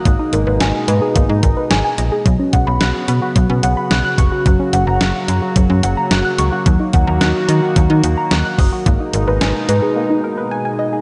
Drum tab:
HH |xxxxxxxx|xxxxxxxx|xxxxxxxx|xxxxxxxo|
SD |--o---o-|--o---o-|--o---o-|--o---o-|
BD |o---oo--|oo--o--o|o---o---|oo--o--o|

HH |xxxx----|
SD |--o-----|
BD |o-------|